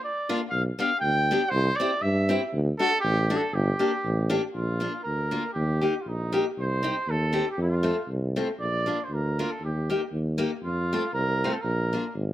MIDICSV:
0, 0, Header, 1, 4, 480
1, 0, Start_track
1, 0, Tempo, 502513
1, 495, Time_signature, 2, 2, 24, 8
1, 3852, Tempo, 507614
1, 11702, End_track
2, 0, Start_track
2, 0, Title_t, "Trumpet"
2, 0, Program_c, 0, 56
2, 38, Note_on_c, 0, 74, 92
2, 371, Note_off_c, 0, 74, 0
2, 473, Note_on_c, 0, 77, 93
2, 595, Note_off_c, 0, 77, 0
2, 764, Note_on_c, 0, 77, 106
2, 949, Note_off_c, 0, 77, 0
2, 955, Note_on_c, 0, 79, 113
2, 1431, Note_on_c, 0, 72, 110
2, 1445, Note_off_c, 0, 79, 0
2, 1681, Note_on_c, 0, 74, 111
2, 1695, Note_off_c, 0, 72, 0
2, 1925, Note_on_c, 0, 76, 93
2, 1940, Note_off_c, 0, 74, 0
2, 2408, Note_off_c, 0, 76, 0
2, 2665, Note_on_c, 0, 69, 123
2, 2865, Note_off_c, 0, 69, 0
2, 2871, Note_on_c, 0, 67, 111
2, 3219, Note_on_c, 0, 69, 91
2, 3233, Note_off_c, 0, 67, 0
2, 3384, Note_on_c, 0, 67, 104
2, 3398, Note_off_c, 0, 69, 0
2, 4118, Note_off_c, 0, 67, 0
2, 4318, Note_on_c, 0, 65, 88
2, 4771, Note_off_c, 0, 65, 0
2, 4797, Note_on_c, 0, 70, 92
2, 5250, Note_off_c, 0, 70, 0
2, 5271, Note_on_c, 0, 67, 88
2, 5724, Note_on_c, 0, 65, 42
2, 5738, Note_off_c, 0, 67, 0
2, 5789, Note_on_c, 0, 63, 93
2, 5803, Note_off_c, 0, 65, 0
2, 6148, Note_off_c, 0, 63, 0
2, 6279, Note_on_c, 0, 72, 103
2, 6753, Note_on_c, 0, 69, 103
2, 6767, Note_off_c, 0, 72, 0
2, 7108, Note_off_c, 0, 69, 0
2, 7139, Note_on_c, 0, 67, 82
2, 7221, Note_off_c, 0, 67, 0
2, 7244, Note_on_c, 0, 65, 83
2, 7673, Note_off_c, 0, 65, 0
2, 8176, Note_on_c, 0, 74, 102
2, 8586, Note_on_c, 0, 72, 57
2, 8600, Note_off_c, 0, 74, 0
2, 8676, Note_on_c, 0, 70, 90
2, 8690, Note_off_c, 0, 72, 0
2, 9029, Note_on_c, 0, 69, 63
2, 9043, Note_off_c, 0, 70, 0
2, 9137, Note_off_c, 0, 69, 0
2, 9161, Note_on_c, 0, 67, 72
2, 9594, Note_off_c, 0, 67, 0
2, 10104, Note_on_c, 0, 65, 98
2, 10544, Note_off_c, 0, 65, 0
2, 10566, Note_on_c, 0, 70, 102
2, 10934, Note_on_c, 0, 69, 74
2, 10948, Note_off_c, 0, 70, 0
2, 11020, Note_on_c, 0, 70, 94
2, 11034, Note_off_c, 0, 69, 0
2, 11517, Note_off_c, 0, 70, 0
2, 11702, End_track
3, 0, Start_track
3, 0, Title_t, "Steel-string acoustic guitar"
3, 0, Program_c, 1, 25
3, 280, Note_on_c, 1, 58, 57
3, 282, Note_on_c, 1, 65, 78
3, 283, Note_on_c, 1, 62, 55
3, 375, Note_off_c, 1, 62, 0
3, 376, Note_off_c, 1, 58, 0
3, 377, Note_off_c, 1, 65, 0
3, 751, Note_on_c, 1, 59, 70
3, 757, Note_on_c, 1, 62, 64
3, 765, Note_on_c, 1, 67, 69
3, 852, Note_off_c, 1, 59, 0
3, 856, Note_off_c, 1, 62, 0
3, 858, Note_off_c, 1, 67, 0
3, 1250, Note_on_c, 1, 59, 72
3, 1259, Note_on_c, 1, 62, 68
3, 1263, Note_on_c, 1, 67, 65
3, 1341, Note_off_c, 1, 59, 0
3, 1345, Note_off_c, 1, 67, 0
3, 1346, Note_off_c, 1, 62, 0
3, 1716, Note_on_c, 1, 60, 65
3, 1727, Note_on_c, 1, 67, 68
3, 1729, Note_on_c, 1, 64, 55
3, 1815, Note_off_c, 1, 60, 0
3, 1817, Note_off_c, 1, 67, 0
3, 1820, Note_off_c, 1, 64, 0
3, 2186, Note_on_c, 1, 60, 66
3, 2194, Note_on_c, 1, 64, 62
3, 2204, Note_on_c, 1, 67, 76
3, 2288, Note_off_c, 1, 60, 0
3, 2292, Note_off_c, 1, 64, 0
3, 2297, Note_off_c, 1, 67, 0
3, 2668, Note_on_c, 1, 57, 59
3, 2673, Note_on_c, 1, 62, 57
3, 2677, Note_on_c, 1, 66, 65
3, 2768, Note_off_c, 1, 57, 0
3, 2771, Note_off_c, 1, 62, 0
3, 2771, Note_off_c, 1, 66, 0
3, 3152, Note_on_c, 1, 57, 72
3, 3157, Note_on_c, 1, 62, 64
3, 3160, Note_on_c, 1, 66, 71
3, 3250, Note_off_c, 1, 57, 0
3, 3253, Note_off_c, 1, 66, 0
3, 3254, Note_off_c, 1, 62, 0
3, 3622, Note_on_c, 1, 58, 60
3, 3629, Note_on_c, 1, 67, 64
3, 3632, Note_on_c, 1, 62, 53
3, 3727, Note_off_c, 1, 58, 0
3, 3729, Note_off_c, 1, 67, 0
3, 3731, Note_off_c, 1, 62, 0
3, 4100, Note_on_c, 1, 58, 67
3, 4102, Note_on_c, 1, 62, 74
3, 4109, Note_on_c, 1, 67, 72
3, 4205, Note_off_c, 1, 58, 0
3, 4207, Note_off_c, 1, 62, 0
3, 4208, Note_off_c, 1, 67, 0
3, 4577, Note_on_c, 1, 58, 55
3, 4583, Note_on_c, 1, 62, 51
3, 4591, Note_on_c, 1, 65, 64
3, 4684, Note_off_c, 1, 58, 0
3, 4687, Note_off_c, 1, 62, 0
3, 4691, Note_off_c, 1, 65, 0
3, 5062, Note_on_c, 1, 58, 60
3, 5064, Note_on_c, 1, 62, 48
3, 5069, Note_on_c, 1, 65, 65
3, 5164, Note_off_c, 1, 62, 0
3, 5166, Note_off_c, 1, 58, 0
3, 5169, Note_off_c, 1, 65, 0
3, 5537, Note_on_c, 1, 67, 70
3, 5545, Note_on_c, 1, 63, 52
3, 5551, Note_on_c, 1, 58, 51
3, 5644, Note_off_c, 1, 67, 0
3, 5646, Note_off_c, 1, 58, 0
3, 5646, Note_off_c, 1, 63, 0
3, 6019, Note_on_c, 1, 58, 73
3, 6025, Note_on_c, 1, 63, 49
3, 6032, Note_on_c, 1, 67, 71
3, 6124, Note_off_c, 1, 58, 0
3, 6124, Note_off_c, 1, 63, 0
3, 6129, Note_off_c, 1, 67, 0
3, 6494, Note_on_c, 1, 60, 64
3, 6504, Note_on_c, 1, 63, 52
3, 6508, Note_on_c, 1, 67, 73
3, 6600, Note_off_c, 1, 60, 0
3, 6605, Note_off_c, 1, 63, 0
3, 6607, Note_off_c, 1, 67, 0
3, 6966, Note_on_c, 1, 60, 64
3, 6973, Note_on_c, 1, 63, 53
3, 6974, Note_on_c, 1, 67, 72
3, 7076, Note_off_c, 1, 60, 0
3, 7077, Note_off_c, 1, 63, 0
3, 7079, Note_off_c, 1, 67, 0
3, 7442, Note_on_c, 1, 57, 67
3, 7450, Note_on_c, 1, 60, 55
3, 7452, Note_on_c, 1, 65, 58
3, 7553, Note_off_c, 1, 57, 0
3, 7557, Note_off_c, 1, 65, 0
3, 7558, Note_off_c, 1, 60, 0
3, 7945, Note_on_c, 1, 57, 69
3, 7948, Note_on_c, 1, 60, 69
3, 7957, Note_on_c, 1, 65, 60
3, 8046, Note_off_c, 1, 57, 0
3, 8048, Note_off_c, 1, 60, 0
3, 8050, Note_off_c, 1, 65, 0
3, 8417, Note_on_c, 1, 58, 58
3, 8425, Note_on_c, 1, 62, 44
3, 8434, Note_on_c, 1, 65, 58
3, 8523, Note_off_c, 1, 58, 0
3, 8528, Note_off_c, 1, 62, 0
3, 8530, Note_off_c, 1, 65, 0
3, 8919, Note_on_c, 1, 58, 68
3, 8922, Note_on_c, 1, 62, 47
3, 8925, Note_on_c, 1, 65, 68
3, 9015, Note_off_c, 1, 62, 0
3, 9016, Note_off_c, 1, 58, 0
3, 9018, Note_off_c, 1, 65, 0
3, 9396, Note_on_c, 1, 58, 55
3, 9401, Note_on_c, 1, 67, 61
3, 9411, Note_on_c, 1, 63, 52
3, 9493, Note_off_c, 1, 58, 0
3, 9496, Note_off_c, 1, 67, 0
3, 9500, Note_off_c, 1, 63, 0
3, 9853, Note_on_c, 1, 58, 74
3, 9860, Note_on_c, 1, 63, 55
3, 9863, Note_on_c, 1, 67, 73
3, 9963, Note_off_c, 1, 58, 0
3, 9963, Note_off_c, 1, 63, 0
3, 9966, Note_off_c, 1, 67, 0
3, 10371, Note_on_c, 1, 57, 66
3, 10374, Note_on_c, 1, 60, 49
3, 10380, Note_on_c, 1, 65, 71
3, 10460, Note_off_c, 1, 60, 0
3, 10461, Note_off_c, 1, 57, 0
3, 10465, Note_off_c, 1, 65, 0
3, 10858, Note_on_c, 1, 65, 79
3, 10864, Note_on_c, 1, 60, 59
3, 10865, Note_on_c, 1, 57, 46
3, 10944, Note_off_c, 1, 57, 0
3, 10945, Note_off_c, 1, 60, 0
3, 10945, Note_off_c, 1, 65, 0
3, 11317, Note_on_c, 1, 58, 57
3, 11325, Note_on_c, 1, 62, 48
3, 11332, Note_on_c, 1, 65, 55
3, 11414, Note_off_c, 1, 58, 0
3, 11418, Note_off_c, 1, 62, 0
3, 11419, Note_off_c, 1, 65, 0
3, 11702, End_track
4, 0, Start_track
4, 0, Title_t, "Tuba"
4, 0, Program_c, 2, 58
4, 496, Note_on_c, 2, 35, 95
4, 664, Note_off_c, 2, 35, 0
4, 968, Note_on_c, 2, 38, 93
4, 1282, Note_off_c, 2, 38, 0
4, 1451, Note_on_c, 2, 36, 111
4, 1620, Note_off_c, 2, 36, 0
4, 1937, Note_on_c, 2, 43, 102
4, 2247, Note_off_c, 2, 43, 0
4, 2415, Note_on_c, 2, 38, 105
4, 2582, Note_off_c, 2, 38, 0
4, 2896, Note_on_c, 2, 33, 103
4, 3206, Note_off_c, 2, 33, 0
4, 3374, Note_on_c, 2, 31, 111
4, 3541, Note_off_c, 2, 31, 0
4, 3860, Note_on_c, 2, 33, 103
4, 4169, Note_off_c, 2, 33, 0
4, 4330, Note_on_c, 2, 34, 95
4, 4643, Note_off_c, 2, 34, 0
4, 4821, Note_on_c, 2, 38, 75
4, 5129, Note_off_c, 2, 38, 0
4, 5293, Note_on_c, 2, 39, 96
4, 5603, Note_off_c, 2, 39, 0
4, 5773, Note_on_c, 2, 34, 86
4, 6083, Note_off_c, 2, 34, 0
4, 6251, Note_on_c, 2, 36, 94
4, 6561, Note_off_c, 2, 36, 0
4, 6727, Note_on_c, 2, 39, 97
4, 7038, Note_off_c, 2, 39, 0
4, 7199, Note_on_c, 2, 41, 106
4, 7514, Note_off_c, 2, 41, 0
4, 7680, Note_on_c, 2, 36, 92
4, 7996, Note_off_c, 2, 36, 0
4, 8161, Note_on_c, 2, 34, 85
4, 8478, Note_off_c, 2, 34, 0
4, 8639, Note_on_c, 2, 38, 90
4, 8956, Note_off_c, 2, 38, 0
4, 9124, Note_on_c, 2, 39, 88
4, 9438, Note_off_c, 2, 39, 0
4, 9606, Note_on_c, 2, 39, 89
4, 9920, Note_off_c, 2, 39, 0
4, 10082, Note_on_c, 2, 41, 86
4, 10397, Note_off_c, 2, 41, 0
4, 10572, Note_on_c, 2, 36, 94
4, 10883, Note_off_c, 2, 36, 0
4, 11041, Note_on_c, 2, 34, 98
4, 11357, Note_off_c, 2, 34, 0
4, 11524, Note_on_c, 2, 32, 93
4, 11702, Note_off_c, 2, 32, 0
4, 11702, End_track
0, 0, End_of_file